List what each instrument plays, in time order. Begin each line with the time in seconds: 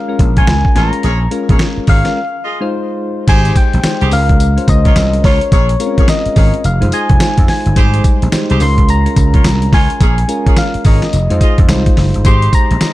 Already playing: synth keys G#3 C#4 F4 A#4, soft synth lead F5
0.08 synth keys G#3 C#4 F4 A#4
0.19 slap bass A#1, kick, closed hi-hat
0.36 horn section F4 A#4 C#5, soft synth lead G#5, kick, closed hi-hat
0.47 slap bass C#2, snare, closed hi-hat
0.65 kick
0.75 slap bass A1, synth keys G#3 C#4 F4 A#4, horn section F4 A#4 C#5, soft synth lead A#5, snare, closed hi-hat
0.93 closed hi-hat
1.03 slap bass A#1, horn section G#4 A#4 C#5, closed hi-hat
1.31 synth keys G#3 C#4 F4 A#4, closed hi-hat
1.49 slap bass A#1, horn section G#4 A#4 C#5, kick, closed hi-hat
1.59 snare, closed hi-hat
1.77 muted slap bass stroke
1.87 slap bass G#1, horn section G#4 A#4 C#5, soft synth lead F5, kick, open hi-hat
2.04 synth keys G#3 C#4 F4 A#4, snare, closed hi-hat
2.43 horn section F4 G#4 D#5
2.61 synth keys G#3 D#4 F4 C5
3.27 slap bass G#1, synth keys G#3 D#4 G4 C5, horn section G4 G#4 C5, soft synth lead G#5, kick, closed hi-hat, crash, tambourine
3.45 closed hi-hat
3.56 soft synth lead G5, kick, closed hi-hat, tambourine
3.73 slap bass A#1, closed hi-hat
3.83 synth keys G#3 D#4 G4 C5, muted slap bass stroke, snare, closed hi-hat, tambourine
4.01 slap bass C2, horn section G4 G#4 C5, closed hi-hat
4.11 slap bass C#2, synth keys G#3 C#4 F4 A#4, soft synth lead F5, open hi-hat, tambourine
4.29 kick, closed hi-hat
4.40 closed hi-hat, tambourine
4.57 synth keys G#3 C#4 F4 C5, closed hi-hat
4.68 slap bass C#2, soft synth lead D#5, kick, closed hi-hat, tambourine
4.85 horn section F4 A#4 C#5, kick, closed hi-hat
4.96 slap bass C2, snare, closed hi-hat, tambourine
5.13 closed hi-hat
5.24 slap bass C#2, horn section F4 A#4 C#5, soft synth lead C#5, kick, snare, open hi-hat
5.41 closed hi-hat
5.52 slap bass A#1, horn section G#4 A#4 C#5, soft synth lead C#5, kick, closed hi-hat, tambourine
5.69 closed hi-hat
5.79 synth keys G#3 C4 F4 A#4, closed hi-hat, tambourine
5.86 synth keys C#4
5.97 horn section G#4 A#4 C#5, muted slap bass stroke, kick, closed hi-hat
6.08 soft synth lead D#5, snare, closed hi-hat, tambourine
6.26 muted slap bass stroke, closed hi-hat
6.36 slap bass G#1, horn section G#4 A#4 C#5, kick, open hi-hat, tambourine
6.54 closed hi-hat
6.64 slap bass F1, soft synth lead F5, closed hi-hat, tambourine
6.81 slap bass F1, synth keys G#3 D#4 F4 C5, closed hi-hat
6.92 horn section F4 G#4 D#5, soft synth lead G#5, closed hi-hat, tambourine
7.09 slap bass F1, kick, closed hi-hat
7.20 synth keys G#3 D#4 F4 C5, snare, closed hi-hat, tambourine
7.38 slap bass F2, kick, closed hi-hat
7.48 soft synth lead G#5, snare, open hi-hat
7.66 slap bass G1, closed hi-hat
7.76 slap bass G#1, synth keys G3 G#3 D#4 C5, horn section G4 G#4 C5, kick, closed hi-hat, tambourine
7.94 closed hi-hat
8.04 kick, closed hi-hat, tambourine
8.22 slap bass A#1, closed hi-hat
8.32 synth keys G#3 D#4 G4 C5, muted slap bass stroke, snare, closed hi-hat, tambourine
8.50 slap bass C2, horn section G4 G#4 C5, closed hi-hat
8.60 slap bass C#2, synth keys G#3 C#4 F4 A#4, soft synth lead C6, open hi-hat, tambourine
8.78 kick, closed hi-hat
8.89 soft synth lead A#5, closed hi-hat, tambourine
9.05 synth keys G#3 C#4 F4 A#4, closed hi-hat
9.16 slap bass C#2, kick, closed hi-hat, tambourine
9.34 horn section F4 A#4 C#5, kick, closed hi-hat
9.44 slap bass C2, snare, closed hi-hat, tambourine
9.62 closed hi-hat
9.72 slap bass C#2, horn section F4 A#4 C#5, soft synth lead G#5, kick, snare, open hi-hat
9.90 closed hi-hat
10.00 slap bass A#1, horn section G#4 A#4 C#5, kick, closed hi-hat, tambourine
10.18 closed hi-hat
10.28 synth keys G#3 C#4 F4 A#4, closed hi-hat, tambourine
10.46 horn section G#4 A#4 C#5, muted slap bass stroke, kick, closed hi-hat
10.56 soft synth lead F5, snare, closed hi-hat, tambourine
10.74 muted slap bass stroke, closed hi-hat
10.84 slap bass G#1, horn section G#4 A#4 C#5, soft synth lead D#5, kick, open hi-hat, tambourine
11.02 snare, closed hi-hat
11.13 slap bass F1, closed hi-hat, tambourine
11.30 slap bass F2, synth keys G#3 D#4 F4 C5, closed hi-hat
11.40 horn section F4 G#4 D#5, kick, closed hi-hat, tambourine
11.58 slap bass F2, kick, closed hi-hat
11.68 slap bass C2, synth keys G#3 D#4 F4 C5, snare, closed hi-hat, tambourine
11.86 kick, closed hi-hat
11.97 slap bass F#1, snare, open hi-hat
12.14 slap bass G1, closed hi-hat
12.24 slap bass G#1, synth keys G#3 D#4 G4 C5, horn section G4 G#4 C5, soft synth lead C6, kick, closed hi-hat, tambourine
12.42 closed hi-hat
12.53 soft synth lead A#5, kick, closed hi-hat, tambourine
12.71 slap bass A#1, closed hi-hat
12.80 synth keys G#3 D#4 G4 D#5, snare, closed hi-hat, tambourine